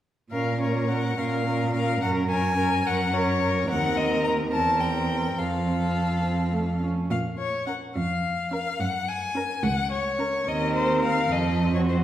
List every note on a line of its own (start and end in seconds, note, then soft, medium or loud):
0.31 1.08 A#2 soft
0.31 0.60 C#4 soft
0.31 0.61 A#4 soft
0.31 0.59 F5 soft
0.60 0.88 C#4 soft
0.60 0.89 A#4 soft
0.60 0.90 C#5 soft
0.88 1.17 C#4 soft
0.88 1.18 A#4 soft
0.88 1.19 F#5 soft
1.18 1.92 A#2 soft
1.18 1.46 C#4 soft
1.18 1.46 A#4 soft
1.18 1.73 F5 soft
1.46 1.73 C#4 soft
1.46 1.74 A#4 soft
1.73 2.01 C#4 soft
1.73 2.01 A#4 soft
1.73 2.01 F5 medium
2.02 2.76 F#2 soft
2.02 2.29 C#4 soft
2.02 2.29 A#4 soft
2.02 2.10 F#5 medium
2.30 2.58 C#4 soft
2.30 2.57 A#4 soft
2.30 2.88 G#5 medium
2.57 2.85 C#4 soft
2.57 2.84 A#4 soft
2.85 3.60 F#2 medium
2.85 3.13 C#4 soft
2.85 3.12 A#4 soft
2.85 3.15 F#5 medium
3.13 3.41 C#4 soft
3.13 3.41 A#4 soft
3.13 3.69 C#5 medium
3.42 3.69 C#4 soft
3.42 3.69 A#4 soft
3.69 4.54 D#2 soft
3.69 4.49 C4 soft
3.69 4.49 A#4 soft
3.69 3.98 F#5 medium
3.97 4.23 D#5 medium
4.24 4.32 A#5 medium
4.52 5.37 E2 soft
4.52 5.36 C4 soft
4.52 5.40 A#4 soft
4.52 4.81 A5 medium
4.80 5.40 G5 medium
5.38 6.87 F2 soft
5.38 6.17 C4 soft
5.38 6.90 A4 soft
5.38 6.82 F5 soft
6.25 6.51 C4 soft
6.53 6.61 A3 soft
6.81 7.09 C#4 soft
7.10 7.79 A#2 soft
7.10 7.19 F5 medium
7.38 7.66 C#5 soft
7.66 7.88 C#4 soft
7.66 7.89 A#4 soft
7.66 7.74 F#5 medium
7.95 8.64 F2 medium
7.95 8.51 F5 soft
8.51 8.73 C#4 soft
8.51 8.74 A#4 soft
8.51 8.82 F5 medium
8.80 9.47 F#2 medium
8.80 9.10 F#5 medium
9.08 9.65 G#5 medium
9.35 9.56 C#4 soft
9.35 9.57 A#4 soft
9.63 10.30 C#2 medium
9.63 9.91 F#5 medium
9.91 10.49 C#5 medium
10.19 10.40 C#4 soft
10.19 10.40 A#4 medium
10.47 11.27 D#2 soft
10.47 11.27 C4 soft
10.47 11.33 A#4 soft
10.47 10.74 D#5 medium
10.75 11.03 C5 medium
11.03 11.33 F5 medium
11.31 12.04 F2 soft
11.31 12.04 C4 soft
11.31 11.74 A4 soft
11.31 11.74 D#5 medium
11.74 12.04 F#4 soft
11.74 11.80 C#5 soft
11.89 11.97 C5 medium